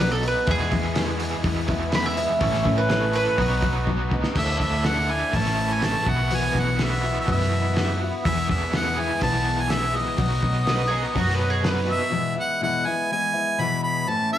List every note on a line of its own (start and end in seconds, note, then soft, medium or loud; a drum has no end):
0.00 0.33 B1 medium
0.00 0.47 B2 medium
0.00 0.24 F#3 medium
0.00 0.47 F#3 medium
0.00 0.23 B3 medium
0.00 0.46 B3 medium
0.00 0.48 B3 loud
0.00 0.21 D#4 medium
0.00 0.46 D#4 medium
0.00 0.48 D#4 loud
0.00 0.46 F#4 medium
0.00 0.48 F#4 medium
0.00 0.21 F#4 medium
0.00 0.11 B4 medium
0.00 0.46 B4 medium
0.12 0.23 A4 loud
0.22 0.47 B3 soft
0.22 0.48 D#4 soft
0.22 0.48 F#4 medium
0.22 open hi-hat medium
0.28 0.50 B4 medium
0.47 0.72 E2 medium
0.47 0.69 E2 medium
0.47 0.72 B2 medium
0.47 0.72 E3 medium
0.47 0.72 G#3 medium
0.47 2.40 B3 medium
0.47 0.71 B3 medium
0.47 2.38 E4 medium
0.47 0.70 E4 medium
0.47 2.41 G#4 medium
0.47 2.41 B4 medium
0.47 kick loud
0.47 open hi-hat medium
0.51 1.44 G#4 loud
0.60 snare soft
0.71 1.34 E2 medium
0.71 0.95 E3 soft
0.71 0.95 G#3 medium
0.71 0.96 B3 medium
0.71 0.96 E4 medium
0.71 kick medium
0.71 open hi-hat medium
0.96 1.69 E3 medium
0.96 1.70 G#3 medium
0.96 1.68 B3 medium
0.96 1.68 E4 medium
0.96 snare loud
0.96 open hi-hat medium
1.20 open hi-hat medium
1.44 2.26 E2 medium
1.44 kick medium
1.44 open hi-hat medium
1.68 1.92 E3 soft
1.68 1.92 G#3 soft
1.68 1.94 B3 medium
1.68 1.94 E4 medium
1.68 kick medium
1.68 open hi-hat medium
1.92 2.18 E3 medium
1.92 2.17 G#3 medium
1.92 2.17 B3 medium
1.92 2.16 E4 medium
1.92 2.06 B5 medium
1.92 snare loud
1.92 open hi-hat medium
2.06 2.76 E5 loud
2.17 2.39 E3 soft
2.17 2.40 G#3 soft
2.17 2.40 B3 medium
2.17 2.40 E4 medium
2.17 open hi-hat medium
2.39 2.62 A1 medium
2.39 2.65 A2 medium
2.39 2.66 E3 medium
2.39 2.65 A3 medium
2.39 3.37 C#4 medium
2.39 2.63 C#4 medium
2.39 3.37 E4 medium
2.39 2.62 E4 medium
2.39 3.37 A4 medium
2.39 3.37 C#5 medium
2.39 kick loud
2.39 open hi-hat medium
2.54 snare soft
2.63 3.27 A1 medium
2.63 2.89 A3 soft
2.63 2.89 C#4 medium
2.63 2.89 E4 medium
2.63 kick medium
2.63 open hi-hat medium
2.78 3.14 B4 medium
2.89 3.38 E3 medium
2.89 3.38 A3 medium
2.89 3.39 C#4 medium
2.89 3.39 E4 medium
2.89 snare loud
2.89 open hi-hat medium
3.13 4.33 B4 loud
3.13 open hi-hat medium
3.36 4.20 B1 loud
3.36 3.63 B2 medium
3.36 3.63 F#3 medium
3.36 4.34 B3 medium
3.36 3.63 B3 medium
3.36 4.34 D#4 medium
3.36 3.62 D#4 medium
3.36 4.34 F#4 medium
3.36 3.61 F#4 medium
3.36 4.34 B4 medium
3.36 kick medium
3.36 open hi-hat medium
3.62 3.86 B3 soft
3.62 3.87 D#4 soft
3.62 3.87 F#4 medium
3.62 kick medium
3.62 open hi-hat medium
3.87 4.12 F#3 medium
3.87 4.12 B3 medium
3.87 4.12 D#4 medium
3.87 4.11 F#4 medium
3.87 kick medium
4.11 4.38 B3 medium
4.11 4.37 D#4 medium
4.11 4.36 F#4 medium
4.11 kick medium
4.24 snare medium
4.35 4.56 D2 medium
4.35 4.83 D3 medium
4.35 5.32 A3 medium
4.35 4.85 A3 medium
4.35 5.32 D4 medium
4.35 4.85 D4 medium
4.35 5.32 E4 medium
4.35 4.87 E4 medium
4.35 5.32 A4 medium
4.35 4.59 E5 medium
4.35 kick loud
4.35 crash loud
4.60 5.22 D2 medium
4.60 4.88 E5 medium
4.60 kick medium
4.84 5.09 D3 soft
4.84 5.10 A3 medium
4.84 5.09 D4 medium
4.84 5.08 E4 medium
4.84 5.13 F#5 medium
4.84 snare medium
4.84 open hi-hat soft
5.09 5.34 D3 medium
5.09 5.35 A3 soft
5.09 5.34 D4 soft
5.09 5.33 E4 soft
5.09 5.37 G#5 medium
5.33 5.95 A1 medium
5.33 5.83 A2 medium
5.33 5.82 E3 medium
5.33 6.06 A3 medium
5.33 5.82 A3 medium
5.33 6.06 C#4 medium
5.33 5.82 C#4 medium
5.33 6.05 E4 medium
5.33 5.84 E4 medium
5.33 6.06 A4 medium
5.33 5.75 A5 loud
5.33 kick medium
5.33 open hi-hat medium
5.46 snare soft
5.73 5.87 G#5 medium
5.82 6.06 E3 medium
5.82 6.07 A3 medium
5.82 6.07 C#4 medium
5.82 6.06 E4 medium
5.82 6.11 A5 medium
5.82 snare loud
5.82 open hi-hat medium
6.05 6.48 B1 medium
6.05 6.78 B2 medium
6.05 6.81 E3 medium
6.05 8.23 B3 medium
6.05 6.30 B3 soft
6.05 8.23 E4 medium
6.05 6.30 E4 soft
6.05 8.22 F#4 medium
6.05 6.31 F#4 soft
6.05 8.22 B4 medium
6.05 6.37 F#5 medium
6.05 kick loud
6.30 6.79 B2 medium
6.30 6.79 E3 medium
6.30 6.81 B3 medium
6.30 6.81 E4 medium
6.30 6.80 F#4 medium
6.30 open hi-hat medium
6.35 6.60 G#5 loud
6.55 7.17 B1 medium
6.55 kick medium
6.55 snare soft
6.59 6.85 F#5 medium
6.79 8.00 B2 medium
6.79 7.04 E3 medium
6.79 7.04 B3 medium
6.79 7.03 E4 medium
6.79 7.02 F#4 medium
6.79 snare medium
6.79 open hi-hat soft
6.84 7.18 E5 medium
7.03 7.26 B3 soft
7.03 7.27 E4 soft
7.03 7.27 F#4 soft
7.20 7.30 E5 medium
7.27 8.10 F#2 medium
7.27 7.76 B2 medium
7.27 7.75 E3 medium
7.27 7.76 B3 medium
7.27 7.77 E4 medium
7.27 7.77 F#4 medium
7.27 kick medium
7.27 open hi-hat soft
7.32 7.99 E5 medium
7.41 snare soft
7.76 8.01 E3 medium
7.76 8.01 B3 medium
7.76 8.02 E4 medium
7.76 8.02 F#4 medium
7.76 snare loud
7.76 open hi-hat soft
8.03 8.25 B3 soft
8.03 8.26 E4 medium
8.03 8.26 F#4 medium
8.25 8.74 E2 medium
8.25 8.46 E2 medium
8.25 8.74 B2 medium
8.25 8.71 E3 medium
8.25 10.18 G#3 medium
8.25 10.18 B3 medium
8.25 8.73 B3 medium
8.25 8.74 E4 medium
8.25 10.18 E4 medium
8.25 8.73 G#4 medium
8.25 10.18 B4 medium
8.25 8.47 E5 loud
8.25 kick loud
8.25 open hi-hat medium
8.49 9.11 E2 medium
8.49 8.73 E5 medium
8.49 kick medium
8.72 8.97 E3 medium
8.72 8.98 B3 medium
8.72 8.98 E4 medium
8.72 8.96 G#4 medium
8.72 9.01 F#5 medium
8.72 snare medium
8.72 open hi-hat soft
8.97 10.19 E2 medium
8.97 10.16 B2 medium
8.97 9.20 E3 soft
8.97 9.21 B3 soft
8.97 9.22 E4 soft
8.97 9.22 G#4 medium
8.97 9.22 G#5 medium
9.21 10.04 B1 medium
9.21 9.71 E2 medium
9.21 9.71 B2 medium
9.21 9.68 E3 medium
9.21 9.69 B3 medium
9.21 9.70 E4 medium
9.21 9.62 A5 loud
9.21 kick medium
9.21 open hi-hat medium
9.61 9.73 G#5 loud
9.70 9.95 E3 medium
9.70 9.94 B3 medium
9.70 9.93 E4 medium
9.70 9.93 G#4 medium
9.70 9.98 E5 loud
9.70 snare medium
9.70 open hi-hat medium
9.94 10.18 E3 soft
9.94 10.18 B3 soft
9.94 10.18 E4 soft
9.94 10.19 G#4 medium
9.94 11.66 D#5 medium
10.18 10.39 B1 medium
10.18 10.67 B2 medium
10.18 10.65 F#3 medium
10.18 10.66 B3 medium
10.18 12.12 B3 medium
10.18 10.68 D#4 medium
10.18 12.12 D#4 medium
10.18 10.68 F#4 medium
10.18 12.12 F#4 medium
10.18 12.12 B4 medium
10.18 kick loud
10.18 open hi-hat medium
10.43 11.05 B1 medium
10.43 kick medium
10.67 10.92 F#3 medium
10.67 10.91 B3 medium
10.67 10.89 D#4 medium
10.67 10.88 F#4 medium
10.67 10.85 B4 medium
10.67 snare loud
10.67 open hi-hat soft
10.88 11.15 D#4 soft
10.88 11.15 F#4 medium
10.88 11.02 G#4 medium
10.92 12.13 B2 medium
10.92 12.12 F#3 medium
10.92 11.14 B3 soft
11.14 11.98 F#2 medium
11.14 11.64 B2 medium
11.14 11.61 F#3 medium
11.14 11.63 B3 medium
11.14 11.63 D#4 medium
11.14 11.64 F#4 loud
11.14 11.33 F#4 medium
11.14 kick medium
11.14 open hi-hat medium
11.29 snare soft
11.34 11.49 B4 medium
11.50 11.65 G#4 medium
11.62 11.88 F#3 medium
11.62 11.88 B3 medium
11.62 11.87 D#4 medium
11.62 11.86 F#4 medium
11.62 snare loud
11.62 open hi-hat medium
11.68 12.02 B4 medium
11.87 12.11 B3 soft
11.87 12.12 D#4 medium
11.87 12.12 F#4 medium
11.87 12.35 E5 medium
12.11 12.37 E2 medium
12.11 12.36 B2 medium
12.11 12.37 E3 medium
12.11 12.36 G#3 medium
12.11 12.35 B3 medium
12.11 12.34 E4 medium
12.36 12.60 E3 medium
12.36 12.61 G#3 soft
12.36 12.60 B3 medium
12.36 12.61 E4 medium
12.40 12.62 F#5 medium
12.61 12.86 E2 medium
12.61 12.86 B2 medium
12.61 12.86 E3 medium
12.61 12.86 G#3 medium
12.61 12.86 B3 medium
12.61 12.85 E4 medium
12.61 12.88 F#5 medium
12.86 13.10 E3 soft
12.86 13.10 G#3 soft
12.86 13.11 B3 medium
12.86 13.11 E4 medium
12.86 13.10 G#5 medium
13.11 13.35 E3 medium
13.11 13.35 G#3 medium
13.11 13.33 B3 medium
13.11 13.32 E4 medium
13.11 13.62 G#5 loud
13.33 13.58 E3 soft
13.33 13.59 G#3 soft
13.33 13.58 B3 soft
13.33 13.58 E4 soft
13.58 14.07 E2 medium
13.58 14.07 B2 medium
13.58 14.06 E3 medium
13.58 14.08 G#3 medium
13.58 14.08 B3 medium
13.58 14.07 E4 loud
13.58 13.82 B5 loud
13.83 14.11 B5 medium
14.07 14.32 A2 medium
14.07 14.32 E3 medium
14.07 14.32 A3 medium
14.07 14.32 C#4 medium
14.07 14.30 E4 medium
14.07 14.32 A5 loud
14.32 14.38 A3 soft
14.32 14.38 C#4 soft
14.32 14.38 E4 medium
14.32 14.38 F#5 loud